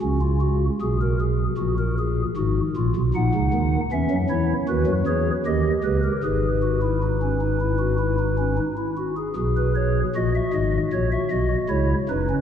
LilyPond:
<<
  \new Staff \with { instrumentName = "Pipe organ" } { \time 4/4 \key gis \minor \tempo 4 = 77 << { r1 | fis''4 e''8 cis''8 b'8 cis''8 dis''8 b'16 ais'16 | b'2.~ b'8 r8 | gis'16 b'16 cis''8 dis''16 e''16 dis''8 cis''16 e''16 dis''8 cis''8 b'8 | } \\ { cis'16 eis'16 fis'8 gis'16 ais'16 gis'8 fis'16 ais'16 gis'8 fis'8 eis'8 | dis'4 cis'8 e'8 fis'8 gis'8 g'4 | gis'8 fis'16 e'16 dis'16 cis'16 dis'16 e'16 fis'16 e'16 dis'16 cis'16 dis'16 e'16 fis'16 gis'16 | r4 fis'2 e'8 dis'16 cis'16 | } >> }
  \new Staff \with { instrumentName = "Pipe organ" } { \clef bass \time 4/4 \key gis \minor <cis, cis>4 <b,, b,>4 <ais,, ais,>4 <gis,, gis,>8 <ais,, ais,>16 <b,, b,>16 | <ais,, ais,>16 <cis, cis>16 <dis, dis>8 <e, e>16 <fis, fis>16 <e, e>8 <dis, dis>16 <fis, fis>16 <e, e>8 <dis, dis>8 <cis, cis>8 | <gis,, gis,>2.~ <gis,, gis,>8 r8 | <b,, b,>4 <ais,, ais,>8 <gis,, gis,>8 <ais,, ais,>8 <b,, b,>8 <cis, cis>8 <fis,, fis,>8 | }
>>